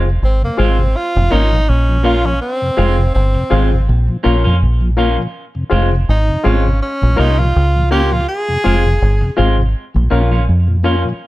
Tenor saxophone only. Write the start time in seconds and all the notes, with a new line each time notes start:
0.24 C4
0.44 A#3
0.60 C4
0.96 F4
1.32 D#4
1.68 C#4
2.05 F4
2.26 C#4
2.41 C4
3.14 C4
6.10 D#4
6.46 C#4
6.82 C#4
7.19 D#4
7.39 F4
7.92 G4
8.12 F4
8.28 G#4